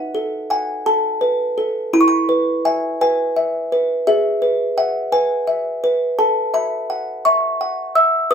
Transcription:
0, 0, Header, 1, 2, 480
1, 0, Start_track
1, 0, Key_signature, 4, "major"
1, 0, Tempo, 715990
1, 1303, Time_signature, 6, 3, 24, 8
1, 1782, Tempo, 705053
1, 5652, End_track
2, 0, Start_track
2, 0, Title_t, "Music box"
2, 0, Program_c, 0, 10
2, 0, Note_on_c, 0, 63, 67
2, 0, Note_on_c, 0, 78, 95
2, 98, Note_on_c, 0, 69, 49
2, 318, Note_off_c, 0, 78, 0
2, 337, Note_on_c, 0, 78, 53
2, 341, Note_on_c, 0, 80, 88
2, 480, Note_off_c, 0, 69, 0
2, 569, Note_off_c, 0, 80, 0
2, 578, Note_on_c, 0, 69, 56
2, 578, Note_on_c, 0, 81, 93
2, 721, Note_off_c, 0, 78, 0
2, 812, Note_on_c, 0, 71, 53
2, 964, Note_off_c, 0, 69, 0
2, 1057, Note_on_c, 0, 69, 55
2, 1203, Note_off_c, 0, 71, 0
2, 1276, Note_off_c, 0, 63, 0
2, 1277, Note_off_c, 0, 81, 0
2, 1296, Note_on_c, 0, 64, 66
2, 1298, Note_on_c, 0, 83, 98
2, 1302, Note_off_c, 0, 69, 0
2, 1345, Note_on_c, 0, 85, 78
2, 1348, Note_off_c, 0, 83, 0
2, 1393, Note_on_c, 0, 83, 100
2, 1395, Note_off_c, 0, 85, 0
2, 1534, Note_on_c, 0, 71, 53
2, 1765, Note_off_c, 0, 83, 0
2, 1778, Note_on_c, 0, 76, 52
2, 1779, Note_on_c, 0, 80, 90
2, 1923, Note_off_c, 0, 71, 0
2, 2012, Note_off_c, 0, 80, 0
2, 2023, Note_on_c, 0, 71, 54
2, 2025, Note_on_c, 0, 80, 99
2, 2165, Note_off_c, 0, 76, 0
2, 2263, Note_on_c, 0, 76, 55
2, 2408, Note_off_c, 0, 71, 0
2, 2507, Note_on_c, 0, 71, 54
2, 2648, Note_off_c, 0, 76, 0
2, 2714, Note_off_c, 0, 64, 0
2, 2718, Note_off_c, 0, 80, 0
2, 2744, Note_on_c, 0, 76, 91
2, 2746, Note_off_c, 0, 71, 0
2, 2746, Note_on_c, 0, 68, 66
2, 2981, Note_on_c, 0, 71, 48
2, 3204, Note_off_c, 0, 76, 0
2, 3223, Note_on_c, 0, 76, 52
2, 3224, Note_on_c, 0, 78, 87
2, 3366, Note_off_c, 0, 71, 0
2, 3454, Note_off_c, 0, 78, 0
2, 3460, Note_on_c, 0, 71, 55
2, 3461, Note_on_c, 0, 80, 97
2, 3608, Note_off_c, 0, 76, 0
2, 3699, Note_on_c, 0, 76, 54
2, 3846, Note_off_c, 0, 71, 0
2, 3946, Note_on_c, 0, 71, 52
2, 4084, Note_off_c, 0, 76, 0
2, 4154, Note_off_c, 0, 80, 0
2, 4156, Note_off_c, 0, 68, 0
2, 4184, Note_off_c, 0, 71, 0
2, 4184, Note_on_c, 0, 69, 69
2, 4184, Note_on_c, 0, 81, 91
2, 4414, Note_off_c, 0, 81, 0
2, 4423, Note_on_c, 0, 76, 49
2, 4426, Note_on_c, 0, 83, 90
2, 4669, Note_on_c, 0, 78, 55
2, 4809, Note_off_c, 0, 76, 0
2, 4887, Note_off_c, 0, 83, 0
2, 4909, Note_on_c, 0, 85, 102
2, 4912, Note_on_c, 0, 76, 60
2, 5050, Note_off_c, 0, 78, 0
2, 5152, Note_on_c, 0, 78, 56
2, 5290, Note_off_c, 0, 76, 0
2, 5365, Note_off_c, 0, 85, 0
2, 5387, Note_on_c, 0, 88, 100
2, 5388, Note_on_c, 0, 76, 57
2, 5530, Note_off_c, 0, 78, 0
2, 5596, Note_off_c, 0, 69, 0
2, 5615, Note_off_c, 0, 88, 0
2, 5625, Note_off_c, 0, 76, 0
2, 5627, Note_on_c, 0, 71, 69
2, 5628, Note_on_c, 0, 87, 110
2, 5652, Note_off_c, 0, 71, 0
2, 5652, Note_off_c, 0, 87, 0
2, 5652, End_track
0, 0, End_of_file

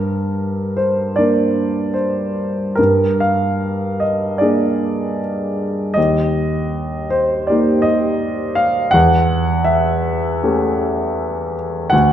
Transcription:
0, 0, Header, 1, 2, 480
1, 0, Start_track
1, 0, Tempo, 785340
1, 1192, Tempo, 839161
1, 1664, Time_signature, 4, 2, 24, 8
1, 2152, Tempo, 779221
1, 3592, Tempo, 759494
1, 4552, Tempo, 731707
1, 5992, Tempo, 764331
1, 6952, Tempo, 710900
1, 7572, End_track
2, 0, Start_track
2, 0, Title_t, "Grand piano"
2, 0, Program_c, 0, 0
2, 0, Control_c, 0, 64, 127
2, 0, Note_on_c, 0, 43, 40
2, 0, Note_on_c, 0, 70, 46
2, 468, Note_on_c, 0, 72, 49
2, 469, Note_off_c, 0, 70, 0
2, 707, Note_on_c, 0, 74, 56
2, 713, Note_off_c, 0, 72, 0
2, 722, Note_on_c, 0, 58, 30
2, 724, Note_on_c, 0, 70, 35
2, 725, Note_on_c, 0, 62, 27
2, 1184, Note_on_c, 0, 72, 45
2, 1188, Note_off_c, 0, 74, 0
2, 1626, Note_off_c, 0, 43, 0
2, 1644, Note_off_c, 0, 58, 0
2, 1644, Note_off_c, 0, 70, 0
2, 1645, Note_off_c, 0, 62, 0
2, 1652, Note_on_c, 0, 70, 56
2, 1660, Note_off_c, 0, 72, 0
2, 1671, Note_on_c, 0, 43, 40
2, 1675, Control_c, 0, 64, 0
2, 1803, Control_c, 0, 64, 127
2, 1909, Note_on_c, 0, 77, 58
2, 1912, Note_off_c, 0, 70, 0
2, 2380, Note_on_c, 0, 75, 51
2, 2389, Note_off_c, 0, 77, 0
2, 2616, Note_on_c, 0, 74, 51
2, 2625, Note_off_c, 0, 75, 0
2, 2631, Note_on_c, 0, 58, 32
2, 2634, Note_on_c, 0, 68, 34
2, 2635, Note_on_c, 0, 62, 31
2, 3105, Note_off_c, 0, 74, 0
2, 3568, Note_off_c, 0, 58, 0
2, 3569, Note_off_c, 0, 68, 0
2, 3570, Note_off_c, 0, 62, 0
2, 3572, Note_off_c, 0, 43, 0
2, 3574, Note_on_c, 0, 75, 66
2, 3595, Note_on_c, 0, 39, 43
2, 3604, Control_c, 0, 64, 0
2, 3709, Control_c, 0, 64, 127
2, 4308, Note_off_c, 0, 75, 0
2, 4311, Note_on_c, 0, 72, 56
2, 4542, Note_on_c, 0, 74, 52
2, 4550, Note_off_c, 0, 72, 0
2, 4557, Note_on_c, 0, 58, 36
2, 4561, Note_on_c, 0, 67, 36
2, 4563, Note_on_c, 0, 63, 33
2, 4771, Note_on_c, 0, 75, 62
2, 4788, Note_off_c, 0, 74, 0
2, 5253, Note_on_c, 0, 77, 65
2, 5258, Note_off_c, 0, 75, 0
2, 5483, Note_off_c, 0, 39, 0
2, 5484, Note_off_c, 0, 58, 0
2, 5486, Note_off_c, 0, 67, 0
2, 5486, Note_on_c, 0, 78, 78
2, 5487, Note_off_c, 0, 63, 0
2, 5500, Note_off_c, 0, 77, 0
2, 5504, Note_on_c, 0, 40, 54
2, 5518, Control_c, 0, 64, 0
2, 5617, Control_c, 0, 64, 127
2, 5969, Note_on_c, 0, 76, 67
2, 5981, Note_off_c, 0, 78, 0
2, 6464, Note_on_c, 0, 57, 38
2, 6464, Note_on_c, 0, 61, 36
2, 6467, Note_on_c, 0, 67, 37
2, 7185, Note_off_c, 0, 76, 0
2, 7404, Note_off_c, 0, 57, 0
2, 7404, Note_off_c, 0, 61, 0
2, 7406, Note_off_c, 0, 40, 0
2, 7406, Note_off_c, 0, 67, 0
2, 7416, Note_on_c, 0, 78, 77
2, 7435, Note_on_c, 0, 38, 54
2, 7447, Control_c, 0, 64, 0
2, 7551, Control_c, 0, 64, 127
2, 7572, Note_off_c, 0, 38, 0
2, 7572, Note_off_c, 0, 78, 0
2, 7572, End_track
0, 0, End_of_file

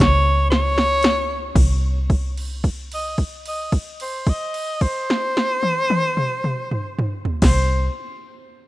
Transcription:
0, 0, Header, 1, 4, 480
1, 0, Start_track
1, 0, Key_signature, -3, "minor"
1, 0, Tempo, 1036269
1, 717, Time_signature, 12, 3, 24, 8
1, 717, Tempo, 1086957
1, 3865, End_track
2, 0, Start_track
2, 0, Title_t, "Tenor saxophone"
2, 0, Program_c, 0, 66
2, 0, Note_on_c, 0, 73, 100
2, 223, Note_off_c, 0, 73, 0
2, 233, Note_on_c, 0, 73, 107
2, 705, Note_off_c, 0, 73, 0
2, 1332, Note_on_c, 0, 75, 74
2, 1437, Note_off_c, 0, 75, 0
2, 1571, Note_on_c, 0, 75, 67
2, 1676, Note_off_c, 0, 75, 0
2, 1808, Note_on_c, 0, 72, 76
2, 1930, Note_on_c, 0, 75, 84
2, 1936, Note_off_c, 0, 72, 0
2, 2160, Note_on_c, 0, 72, 94
2, 2167, Note_off_c, 0, 75, 0
2, 3236, Note_off_c, 0, 72, 0
2, 3315, Note_on_c, 0, 72, 91
2, 3522, Note_off_c, 0, 72, 0
2, 3865, End_track
3, 0, Start_track
3, 0, Title_t, "Fingered electric bass"
3, 0, Program_c, 1, 33
3, 0, Note_on_c, 1, 37, 101
3, 700, Note_off_c, 1, 37, 0
3, 720, Note_on_c, 1, 36, 84
3, 3235, Note_off_c, 1, 36, 0
3, 3310, Note_on_c, 1, 36, 90
3, 3511, Note_off_c, 1, 36, 0
3, 3865, End_track
4, 0, Start_track
4, 0, Title_t, "Drums"
4, 0, Note_on_c, 9, 36, 79
4, 0, Note_on_c, 9, 42, 89
4, 6, Note_on_c, 9, 38, 83
4, 45, Note_off_c, 9, 36, 0
4, 45, Note_off_c, 9, 42, 0
4, 52, Note_off_c, 9, 38, 0
4, 240, Note_on_c, 9, 38, 83
4, 286, Note_off_c, 9, 38, 0
4, 360, Note_on_c, 9, 38, 65
4, 406, Note_off_c, 9, 38, 0
4, 475, Note_on_c, 9, 42, 64
4, 483, Note_on_c, 9, 38, 92
4, 522, Note_off_c, 9, 42, 0
4, 529, Note_off_c, 9, 38, 0
4, 720, Note_on_c, 9, 36, 91
4, 722, Note_on_c, 9, 49, 71
4, 764, Note_off_c, 9, 36, 0
4, 766, Note_off_c, 9, 49, 0
4, 960, Note_on_c, 9, 36, 61
4, 961, Note_on_c, 9, 49, 35
4, 1004, Note_off_c, 9, 36, 0
4, 1005, Note_off_c, 9, 49, 0
4, 1082, Note_on_c, 9, 57, 42
4, 1126, Note_off_c, 9, 57, 0
4, 1199, Note_on_c, 9, 36, 56
4, 1201, Note_on_c, 9, 49, 41
4, 1243, Note_off_c, 9, 36, 0
4, 1245, Note_off_c, 9, 49, 0
4, 1321, Note_on_c, 9, 57, 48
4, 1365, Note_off_c, 9, 57, 0
4, 1437, Note_on_c, 9, 49, 39
4, 1438, Note_on_c, 9, 36, 51
4, 1481, Note_off_c, 9, 49, 0
4, 1482, Note_off_c, 9, 36, 0
4, 1559, Note_on_c, 9, 57, 45
4, 1603, Note_off_c, 9, 57, 0
4, 1677, Note_on_c, 9, 49, 46
4, 1678, Note_on_c, 9, 36, 59
4, 1722, Note_off_c, 9, 36, 0
4, 1722, Note_off_c, 9, 49, 0
4, 1799, Note_on_c, 9, 57, 45
4, 1844, Note_off_c, 9, 57, 0
4, 1917, Note_on_c, 9, 49, 44
4, 1918, Note_on_c, 9, 36, 64
4, 1961, Note_off_c, 9, 49, 0
4, 1962, Note_off_c, 9, 36, 0
4, 2039, Note_on_c, 9, 57, 46
4, 2083, Note_off_c, 9, 57, 0
4, 2158, Note_on_c, 9, 49, 48
4, 2159, Note_on_c, 9, 36, 57
4, 2202, Note_off_c, 9, 49, 0
4, 2203, Note_off_c, 9, 36, 0
4, 2286, Note_on_c, 9, 38, 76
4, 2330, Note_off_c, 9, 38, 0
4, 2405, Note_on_c, 9, 38, 77
4, 2449, Note_off_c, 9, 38, 0
4, 2519, Note_on_c, 9, 48, 77
4, 2563, Note_off_c, 9, 48, 0
4, 2639, Note_on_c, 9, 48, 99
4, 2684, Note_off_c, 9, 48, 0
4, 2759, Note_on_c, 9, 47, 78
4, 2803, Note_off_c, 9, 47, 0
4, 2878, Note_on_c, 9, 47, 83
4, 2922, Note_off_c, 9, 47, 0
4, 2999, Note_on_c, 9, 45, 80
4, 3043, Note_off_c, 9, 45, 0
4, 3118, Note_on_c, 9, 45, 92
4, 3163, Note_off_c, 9, 45, 0
4, 3236, Note_on_c, 9, 43, 77
4, 3280, Note_off_c, 9, 43, 0
4, 3310, Note_on_c, 9, 49, 90
4, 3311, Note_on_c, 9, 36, 94
4, 3317, Note_on_c, 9, 38, 76
4, 3354, Note_off_c, 9, 49, 0
4, 3355, Note_off_c, 9, 36, 0
4, 3361, Note_off_c, 9, 38, 0
4, 3865, End_track
0, 0, End_of_file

